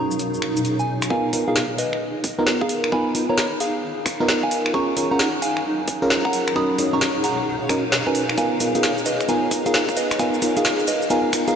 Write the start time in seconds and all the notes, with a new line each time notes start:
Already playing: B2 C#4 D#4 F#4 G#4 A#4 C#5 F5 A#5
0.11 shaker
0.19 closed hi-hat, shaker
0.34 shaker
0.42 finger snap
0.57 closed hi-hat, shaker
0.65 closed hi-hat, shaker
0.79 G#5, shaker
1.02 finger snap, closed hi-hat, shaker
1.10 B3 D#4 F4 A#4 F5 G#5, kick
1.33 B3 D#4 F4 A#4, open hi-hat
1.48 B3 D#4 F4 G#4 A#4 F5
1.56 snare
1.78 B4 D#5, open hi-hat
1.93 finger snap
2.24 kick, open hi-hat
2.39 B3 D#4 F4 A#4
2.47 snare
2.61 G#4 F5, kick
2.69 open hi-hat
2.84 finger snap
2.92 B3 D#4 F4 A#4 G#5 B5, kick
3.15 B3 D#4 F4 A#4, open hi-hat
3.29 B3 D#4 F4 A#4 C#5 A#5
3.38 snare
3.60 G#4 F5, open hi-hat
4.06 finger snap, kick, open hi-hat
4.20 B3 D#4 F4 A#4
4.28 snare
4.43 F5 G#5, kick
4.51 open hi-hat
4.66 finger snap
4.74 F#3 C#4 F4 G#4 A#4 A#5 C#6, kick
4.93 C#4 F4 G#4 A#4 C#5 F5, open hi-hat
5.11 C#4 F4 G#4 A#4 F#5 A#5
5.19 snare
5.42 F5 G#5, open hi-hat
5.57 finger snap
5.88 kick, open hi-hat
6.02 C#4 F4 G#4 A#4
6.10 snare
6.25 F#5 A#5, kick
6.33 open hi-hat
6.48 finger snap
6.56 B2 C#4 D#4 F#4 A#4 B5 D#6, kick
6.78 C#4 D#4 F#4 A#4, open hi-hat
6.93 C#4 D#4 F#4 A#4 A#5 C#6
7.01 snare
7.24 F#5 A#5, open hi-hat
7.69 C#4 D#4 F#4 A#4, finger snap, kick, open hi-hat
7.92 snare
8.07 C#4 D#4 F#4 A#4 B4 G#5, kick
8.15 open hi-hat
8.29 finger snap
8.38 B3 D#4 F4 A#4 F5 G#5, kick, closed hi-hat, shaker
8.60 B3 D#4 F4 A#4, open hi-hat, shaker
8.75 B3 D#4 F4 G#4 A#4 F5, closed hi-hat, shaker
8.83 snare, closed hi-hat, shaker
8.98 shaker
9.06 B4 D#5, open hi-hat, shaker
9.21 finger snap, shaker
9.29 B3 D#4 F4 A#4 F5 G#5, closed hi-hat, shaker
9.51 B3 D#4 F4 A#4, kick, open hi-hat, shaker
9.66 B3 D#4 F4 G#4 A#4 F5, closed hi-hat, shaker
9.74 snare, closed hi-hat, shaker
9.89 kick, shaker
9.97 B4 D#5, open hi-hat, shaker
10.11 finger snap, closed hi-hat, shaker
10.19 B3 D#4 F4 A#4 F5 G#5, kick, closed hi-hat, shaker
10.34 shaker
10.42 B3 D#4 F4 A#4, open hi-hat, shaker
10.57 B3 D#4 F4 G#4 A#4 F5, closed hi-hat, shaker
10.65 snare, closed hi-hat, shaker
10.79 shaker
10.88 B4 D#5, open hi-hat, shaker
11.02 shaker
11.10 B3 D#4 F4 A#4 F5 G#5, closed hi-hat, shaker
11.33 B3 D#4 F4 A#4, finger snap, kick, open hi-hat, shaker
11.48 B3 D#4 F4 G#4 A#4 F5, closed hi-hat, shaker